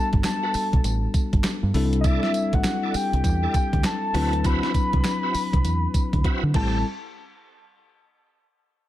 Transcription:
0.00 0.34 G3 medium
0.00 0.35 B3 medium
0.00 0.35 D4 medium
0.00 0.35 F#4 medium
0.00 0.35 A4 medium
0.13 0.21 G1 loud
0.13 kick medium
0.13 closed hi-hat medium
0.24 0.81 A5 loud
0.24 snare loud
0.24 clap medium
0.24 closed hi-hat medium
0.24 tambourine loud
0.43 0.55 F#4 medium
0.43 0.55 A4 medium
0.43 0.55 B4 medium
0.54 muted fingered electric bass stroke medium
0.54 open hi-hat medium
0.54 tambourine medium
0.73 0.81 B1 medium
0.73 kick medium
0.73 closed hi-hat medium
0.84 1.06 A1 medium
0.84 closed hi-hat medium
0.84 tambourine medium
1.14 kick medium
1.14 closed hi-hat medium
1.14 tambourine medium
1.33 1.41 G1 loud
1.33 kick medium
1.33 closed hi-hat medium
1.44 snare loud
1.44 clap medium
1.44 closed hi-hat medium
1.44 tambourine medium
1.63 1.71 G2 loud
1.74 2.17 C2 medium
1.74 2.74 G3 medium
1.74 2.74 C4 medium
1.74 2.75 D4 medium
1.74 2.75 E4 medium
1.74 2.75 A4 loud
1.74 open hi-hat medium
1.93 closed hi-hat medium
2.01 2.32 E4 loud
2.01 2.32 A4 medium
2.01 2.33 D5 loud
2.01 2.08 D#5 medium
2.01 kick loud
2.01 closed hi-hat medium
2.01 tambourine medium
2.06 2.56 E5 loud
2.23 snare medium
2.34 closed hi-hat medium
2.34 tambourine medium
2.53 2.61 A1 loud
2.53 2.90 F#5 loud
2.53 kick loud
2.53 closed hi-hat medium
2.64 snare loud
2.64 clap medium
2.64 closed hi-hat medium
2.64 tambourine loud
2.83 2.95 E4 medium
2.83 2.95 A4 medium
2.83 2.95 D5 medium
2.91 2.98 F#5 medium
2.91 muted fingered electric bass stroke medium
2.91 open hi-hat medium
2.91 tambourine medium
2.96 3.55 G5 medium
3.13 3.21 C2 medium
3.13 closed hi-hat medium
3.24 3.46 E2 loud
3.24 kick loud
3.24 closed hi-hat medium
3.24 tambourine medium
3.43 3.55 E4 medium
3.43 3.55 A4 medium
3.43 3.55 D5 medium
3.54 3.83 G5 loud
3.54 kick medium
3.54 closed hi-hat medium
3.54 tambourine medium
3.73 3.81 D2 medium
3.73 kick loud
3.73 closed hi-hat medium
3.84 4.47 A5 loud
3.84 snare loud
3.84 clap medium
3.84 closed hi-hat medium
3.84 tambourine loud
4.14 4.58 D2 medium
4.14 5.14 F#3 medium
4.14 4.34 C4 medium
4.14 5.15 C4 medium
4.14 5.15 D4 medium
4.14 4.34 E4 medium
4.14 5.15 E4 medium
4.14 4.34 F#4 medium
4.14 4.34 B4 medium
4.14 5.15 B4 medium
4.14 open hi-hat loud
4.33 closed hi-hat medium
4.44 4.72 C4 medium
4.44 4.73 E4 medium
4.44 4.73 F#4 medium
4.44 4.73 B4 loud
4.44 6.25 B5 loud
4.44 kick loud
4.44 closed hi-hat medium
4.44 tambourine medium
4.63 snare medium
4.74 kick medium
4.74 closed hi-hat medium
4.74 tambourine medium
4.93 5.01 C2 loud
4.93 kick medium
4.93 closed hi-hat medium
5.04 snare loud
5.04 clap medium
5.04 closed hi-hat medium
5.04 tambourine medium
5.23 5.35 C4 medium
5.23 5.35 E4 medium
5.23 5.35 F#4 medium
5.23 5.35 B4 medium
5.34 muted fingered electric bass stroke medium
5.34 open hi-hat medium
5.34 tambourine medium
5.53 5.61 C2 medium
5.53 kick medium
5.53 closed hi-hat medium
5.64 5.86 E2 loud
5.64 closed hi-hat medium
5.64 tambourine medium
5.94 kick medium
5.94 closed hi-hat medium
5.94 tambourine medium
6.13 6.21 D2 loud
6.13 kick medium
6.13 closed hi-hat medium
6.24 6.44 C4 medium
6.24 6.44 E4 medium
6.24 6.44 F#4 medium
6.24 6.44 B4 medium
6.24 kick medium
6.24 closed hi-hat medium
6.43 6.51 D3 loud
6.54 6.82 A1 medium
6.54 6.83 G3 medium
6.54 6.78 C4 medium
6.54 6.83 C4 medium
6.54 6.83 E4 medium
6.54 6.78 G4 medium
6.54 6.78 A4 loud
6.54 6.83 A4 medium
6.54 6.83 A5 medium
6.54 kick loud
6.54 crash medium

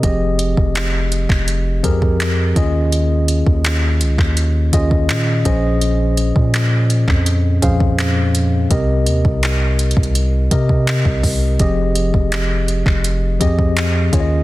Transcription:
0.03 0.55 F1 loud
0.03 1.17 F3 medium
0.03 1.17 C4 medium
0.03 1.17 G4 medium
0.03 1.17 G#4 medium
0.03 1.18 D#5 medium
0.03 kick loud
0.03 closed hi-hat medium
0.39 closed hi-hat medium
0.57 1.27 F1 loud
0.57 kick medium
0.75 clap loud
0.75 closed hi-hat medium
1.12 closed hi-hat medium
1.29 1.82 F1 loud
1.29 kick loud
1.29 clap medium
1.48 closed hi-hat medium
1.83 2.53 F2 loud
1.83 2.56 F3 medium
1.83 2.56 C4 medium
1.83 2.56 G4 medium
1.83 2.55 G#4 medium
1.83 2.57 A#4 loud
1.83 kick loud
1.83 closed hi-hat medium
2.02 kick loud
2.20 clap loud
2.20 closed hi-hat medium
2.55 3.43 D#2 loud
2.55 3.71 D#3 medium
2.55 3.72 C#4 medium
2.55 3.72 F4 medium
2.55 3.72 G#4 medium
2.55 3.72 D#5 loud
2.55 kick loud
2.55 closed hi-hat medium
2.92 closed hi-hat medium
3.28 closed hi-hat medium
3.46 4.03 D#2 loud
3.46 kick medium
3.64 clap loud
3.64 closed hi-hat medium
4.01 4.18 C#2 loud
4.01 closed hi-hat medium
4.18 4.71 D#2 loud
4.18 kick loud
4.18 clap medium
4.37 closed hi-hat medium
4.72 5.11 D#2 loud
4.72 5.45 D#3 medium
4.72 5.44 C#4 medium
4.72 5.45 F4 medium
4.72 5.44 G#4 medium
4.72 5.45 D#5 loud
4.72 kick loud
4.72 closed hi-hat medium
4.91 kick loud
5.09 5.44 A#2 loud
5.09 clap loud
5.09 closed hi-hat medium
5.45 6.32 A#1 loud
5.45 6.61 A#2 medium
5.45 6.61 F3 medium
5.45 6.61 C#4 medium
5.45 6.61 G#4 medium
5.45 6.61 C5 medium
5.45 6.61 D#5 loud
5.45 kick loud
5.45 closed hi-hat medium
5.81 closed hi-hat medium
6.17 closed hi-hat medium
6.36 7.05 A#2 loud
6.36 kick medium
6.54 clap loud
6.54 closed hi-hat medium
6.90 closed hi-hat medium
7.08 7.60 F2 loud
7.08 kick loud
7.08 clap medium
7.26 closed hi-hat medium
7.61 8.67 F2 loud
7.61 8.47 A#2 medium
7.61 8.47 F3 medium
7.61 8.48 C#4 medium
7.61 8.48 G#4 medium
7.61 8.48 C5 medium
7.61 8.48 F5 loud
7.61 kick loud
7.61 closed hi-hat medium
7.80 kick loud
7.99 clap loud
7.99 closed hi-hat medium
8.35 closed hi-hat medium
8.70 9.08 C2 loud
8.70 9.84 C3 medium
8.70 9.84 C4 medium
8.70 9.84 G4 medium
8.70 9.85 A#4 medium
8.70 9.85 D#5 medium
8.70 kick loud
8.70 closed hi-hat medium
9.06 9.24 D#2 medium
9.06 closed hi-hat medium
9.25 9.94 C2 medium
9.25 kick medium
9.43 clap loud
9.43 closed hi-hat medium
9.79 closed hi-hat medium
9.91 closed hi-hat soft
9.97 10.49 C2 loud
9.97 kick loud
10.03 closed hi-hat soft
10.15 closed hi-hat medium
10.51 11.36 C3 medium
10.51 11.04 C3 loud
10.51 11.37 C4 medium
10.51 11.37 G4 medium
10.51 11.37 A#4 medium
10.51 11.37 D#5 loud
10.51 kick loud
10.51 closed hi-hat medium
10.69 kick loud
10.87 clap loud
10.87 closed hi-hat medium
11.05 11.23 C2 loud
11.05 kick medium
11.23 11.58 C2 loud
11.23 kick medium
11.23 open hi-hat medium
11.59 12.12 F1 loud
11.59 12.73 F3 medium
11.59 12.73 C4 medium
11.59 12.74 G4 medium
11.59 12.74 G#4 medium
11.59 12.74 D#5 medium
11.59 kick loud
11.59 closed hi-hat medium
11.95 closed hi-hat medium
12.14 12.83 F1 loud
12.14 kick medium
12.32 clap loud
12.32 closed hi-hat medium
12.68 closed hi-hat medium
12.86 13.38 F1 loud
12.86 kick loud
12.86 clap medium
13.04 closed hi-hat medium
13.40 14.10 F2 loud
13.40 14.12 F3 medium
13.40 14.13 C4 medium
13.40 14.13 G4 medium
13.40 14.12 G#4 medium
13.40 14.13 D#5 loud
13.40 kick loud
13.40 closed hi-hat medium
13.59 kick loud
13.77 clap loud
13.77 closed hi-hat medium
14.12 14.43 D#2 loud
14.12 14.43 D#3 medium
14.12 14.43 C#4 medium
14.12 14.43 F4 medium
14.12 14.43 G#4 medium
14.12 14.20 C#5 medium
14.12 kick loud
14.12 closed hi-hat medium
14.20 14.43 D#5 loud

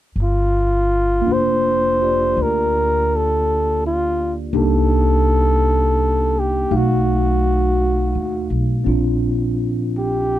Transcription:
0.16 1.23 G1 medium
0.23 1.34 F4 medium
1.21 4.51 A#3 soft
1.26 2.33 F1 soft
1.26 4.53 D4 soft
1.26 2.00 F4 soft
1.33 2.44 C5 medium
2.02 4.54 F4 soft
2.02 4.53 G4 soft
2.02 4.55 D5 soft
2.37 4.50 D2 medium
2.42 3.18 A#4 medium
3.16 3.85 A4 medium
3.86 4.35 F4 medium
4.53 6.66 C2 medium
4.53 6.71 A#3 soft
4.53 6.71 D4 soft
4.53 6.70 D#4 soft
4.53 6.71 G4 soft
4.53 6.41 A4 medium
6.39 6.78 G4 medium
6.71 8.11 B1 medium
6.71 8.86 A3 soft
6.71 8.87 D#4 soft
6.71 8.87 F#4 soft
6.71 8.87 F5 soft
6.77 8.54 F#4 medium
8.15 8.48 D#2 soft
8.50 8.84 B1 medium
8.84 10.39 A#1 medium
8.84 10.39 C4 soft
8.84 10.39 D4 soft
8.84 10.39 F4 soft
9.98 10.39 G4 medium

